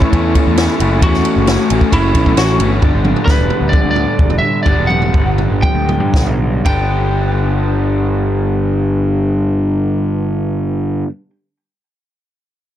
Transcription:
Already playing: A2 E3 A3 C#4 E4 A4 C#5 E5 C#6
0.02 kick
0.12 E2 A2 E3 A3 C#4 E4, kick, ride
0.35 kick, ride
0.47 E2
0.57 A2 E3 A3 C#4 E4, snare, ride
0.80 F#1 A2 E3 A3 C#4 E4, ride
1.02 E2 A2 E3 A3 C#4 E4 F#4 F#5, kick, ride
1.14 snare
1.25 ride
1.36 F#1
1.47 A2 E3 A3 C#4 E4, snare, ride
1.70 A1 A2 E3 A3 C#4 E4, ride
1.81 kick
1.92 F#1 A2 E3 A3 C#4 E4, kick, ride
2.15 B1, kick, ride
2.26 kick
2.36 A1 A2 E3 A3 C#4 E4 F#4, snare, ride
2.59 G1 A2 E3 A3 C#4 E4, ride
2.81 G1 G2 D3 G3 B3 D4, kick, floor tom
2.94 G1
3.05 mid tom
3.16 floor tom
3.25 D2 B4, kick, snare
3.39 E1
3.50 floor tom
3.61 D2
3.69 D5, mid tom
3.73 kick
3.85 D2
3.91 D5
3.96 floor tom
4.19 E1, kick
4.30 floor tom
4.39 E5
4.63 G1 G2 D3 G3 D5, kick, floor tom
4.67 B3 D4
4.78 E1
4.87 F#5, mid tom
5.02 floor tom
5.14 G1, kick
5.25 G1
5.38 floor tom
5.50 G1
5.62 G5, kick, mid tom
5.75 D2
5.89 floor tom, mid tom
6.00 G2
6.14 B1, kick, snare
6.27 floor tom
6.64 G1 G2 D3 G3 B3 D4 G5, kick, ride

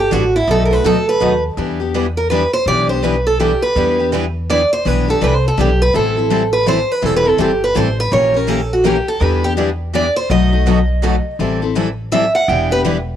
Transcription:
0.00 G4
0.11 A1 E3 G3 B3 D4 E4 F#4 G4 B4
0.36 E4
0.47 B1 B2 D#3 F#3 A3 B3 D#4 F#4 A4
0.65 A#4
0.71 A3 D#4 F#4 B4
0.84 D2 B2 D#3 F#3 A3 B3 D#4 F#4 A4
1.09 B4
1.20 D#2 B2 D#3 F#3 A3 B3 D#4 F#4 A4
1.57 E2 E3 G3 B3 D4 E4 G4 B4
1.80 B3 D4 G4
1.94 E3 G3 B3 D4 E4 G4 B4
2.17 A#4
2.30 E3 G3 B3 D4 E4 G4 B4
2.53 C5
2.66 B1 E3 G3 B3 D4 E4 G4 B4 D5
2.89 B3 D4 G4 C5
3.03 E3 G3 B3 D4 E4 G4 B4
3.27 A4
3.40 E3 G3 B3 D4 E4 G4 B4
3.62 B4
3.76 E2 E3 G3 B3 D4 E4 G4 B4
3.99 B3 D4 G4
4.12 E3 G3 B3 D4 E4 G4 B4
4.50 E3 G3 B3 D4 E4 G4 B4 D5
4.73 C5
4.85 B1 E3 G3 B3 D4 E4 G4 B4
5.08 B3 D4 G4 A4
5.21 C2 E3 G3 B3 D4 E4 G4 B4
5.35 C5
5.48 A4
5.58 B1 E3 G3 B3 D4 E4 G4 B4
5.82 B4
5.94 A1 E3 G3 C4 E4 A4
6.17 C4 E4 A4
6.30 E3 G3 C4 E4 A4
6.53 B4
6.67 E3 G3 C4 E4 A4 C5
6.92 B4
7.02 E1 E3 G3 C4 E4 A4
7.16 B4
7.25 C4 E4 A4
7.29 A4
7.38 G1 E3 G3 C4 E4 G4 A4
7.64 B4
7.75 A1 E3 G3 C4 E4 A4 C5
8.00 B4
8.12 A#1 E3 A#3 C#4 G4 A#4 C#5
8.34 C#4 G4 A#4
8.47 E3 A#3 C#4 G4 A4 A#4
8.73 F#4
8.85 E3 A#3 C#4 G4 A#4
9.08 A4
9.20 E2 E3 G3 B3 D4 E4 G4 B4
9.44 B3 D4 G4
9.57 E3 G3 B3 D4 E4 G4 B4
9.94 E3 G3 B3 D4 E4 G4 B4 D5
10.16 C5
10.30 B1 B2 D#3 F#3 A3 B3 D#4 F#4 A4 D#5
10.52 A3 D#4 F#4
10.66 B2 D#3 F#3 A3 B3 D#4 F#4 A4
11.02 B2 D#3 F#3 A3 B3 D#4 F#4 A4
11.39 A1 E3 G3 C4 E4 A4
11.62 C4 E4 A4
11.75 E3 G3 C4 E4 A4
12.12 E3 G3 C4 E4 A4 E5
12.35 F#5
12.48 E1 E3 G3 B3 D4 E4 G4 B4 G5
12.71 B3 D4 G4 B4
12.85 E3 G3 B3 D4 E4 G4 B4

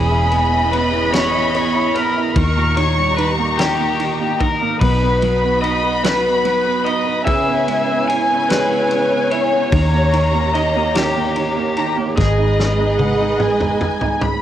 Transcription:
Already playing: E1 E3 B3 C#4 G#4 D#5 B5
0.11 E4
0.32 B3, ride
0.52 E4
0.72 B3 B4, ride
0.93 E4
1.13 B3 C#5, snare, ride
1.34 E4
1.54 B3 C#5, ride
1.75 E4
1.95 B3 A#4, ride
2.16 E4
2.35 D#2 D#3 D#4 G4 A#5 C#6, kick, ride
2.57 A#2
2.77 D#3 C#5, ride
2.98 G3
3.17 D#3 B4, ride
3.38 A#3
3.58 D#3 G4, snare, ride
3.79 A#3
4.00 D#3, ride
4.20 A#3
4.40 D#3 A#4, kick, ride
4.61 A#3
4.80 B1 B2 F#4 B4 B5, kick, ride
5.02 B3
5.22 F#3, ride
5.44 B3
5.62 D#4 D#5, ride
5.83 B3
6.03 F#3 B4, snare, ride
6.25 B3
6.45 F#3, ride
6.65 B3
6.85 D#4 D#5, ride
7.06 B3
7.25 C#2 C#3 C#4 E4 C#5 E5 G#5, kick, ride
7.47 B3
7.67 G#3, ride
7.89 B3
8.08 E4 G#5, ride
8.30 B3
8.49 G#3 B4, snare, ride
8.70 B3
8.91 G#3, ride
9.11 B3
9.31 E4 C#5, ride
9.52 B3
9.72 D#2 D#3 G4 A#5, kick, ride
9.93 A#3
10.13 D#3, ride
10.34 A#3
10.54 D#3 D#5, ride
10.76 A#3
10.95 D#3 G4, snare, ride
11.16 A#3
11.36 D#3, ride
11.57 A#3
11.77 D#3 A#5, ride
11.97 A#3
12.17 G#1 G#3 G#4 B4 D#5, kick, snare
12.38 D#4
12.59 G#3, snare
12.79 D#4
12.99 G#3 F#5, high tom
13.20 D#4
13.40 G#3 G#5, mid tom
13.60 D#4, mid tom
13.81 G#3, mid tom
14.01 D#4, floor tom
14.21 G#3 B5, floor tom

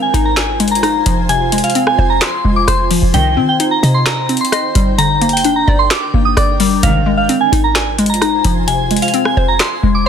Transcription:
Already playing: D#3 G#3 C4 F4 C5 G#5
0.02 G#5
0.14 G#1 D#4, closed hi-hat
0.25 A#5
0.37 G#5, snare, clap, closed hi-hat
0.60 G#3, closed hi-hat
0.68 A#5, closed hi-hat
0.75 closed hi-hat
0.83 D#4 A#5, cross-stick, closed hi-hat
1.06 F1 F3, closed hi-hat
1.29 C3 F4 C5 G#5, closed hi-hat
1.52 G#3, closed hi-hat
1.58 closed hi-hat
1.64 F5, closed hi-hat
1.70 closed hi-hat
1.75 C4, closed hi-hat
1.87 G#5, cross-stick
1.98 F1 C5
2.10 A#5
2.21 C6, snare, clap, closed hi-hat
2.45 F1 G#3
2.56 D6
2.68 F1 C5 C6, cross-stick, closed hi-hat
2.91 F3, open hi-hat
3.02 F1
3.14 C2 G2 D#3 D#4 G5, closed hi-hat
3.37 D#3 C4
3.49 G5
3.60 D#4, closed hi-hat
3.71 A#5
3.83 C3 D#5, closed hi-hat
3.94 C6
4.06 A#5, snare, clap, closed hi-hat
4.29 C4, closed hi-hat
4.37 C6, closed hi-hat
4.45 closed hi-hat
4.52 D#5 C6, cross-stick, closed hi-hat
4.75 G1 G3, closed hi-hat
4.98 D3 D4 A#4 A#5, closed hi-hat
5.21 A#3, closed hi-hat
5.29 G5, closed hi-hat
5.37 closed hi-hat
5.44 D4, closed hi-hat
5.56 A#5
5.68 G1 D5
5.79 C6
5.91 D6, snare, clap, closed hi-hat
6.14 G1 A#3
6.25 D#6
6.37 G1 D5 D6, cross-stick, closed hi-hat
6.60 G3, open hi-hat
6.83 G#1 C2 G#2 D#3 F4 C5 F5 G#5, closed hi-hat
7.06 G#3
7.17 F5
7.29 C4, closed hi-hat
7.41 G#5
7.52 G#1 D#4, closed hi-hat
7.64 A#5
7.75 G#5, snare, clap, closed hi-hat
7.98 G#3, closed hi-hat
8.06 A#5, closed hi-hat
8.14 closed hi-hat
8.21 D#4 A#5, cross-stick, closed hi-hat
8.44 F1 F3, closed hi-hat
8.67 C3 G#5, closed hi-hat
8.91 G#3, closed hi-hat
8.96 closed hi-hat
9.02 F5, closed hi-hat
9.08 closed hi-hat
9.14 C4, closed hi-hat
9.25 G#5, cross-stick
9.37 F1 C5
9.48 A#5
9.60 C6, snare, clap, closed hi-hat
9.83 F1 G#3
9.95 D6

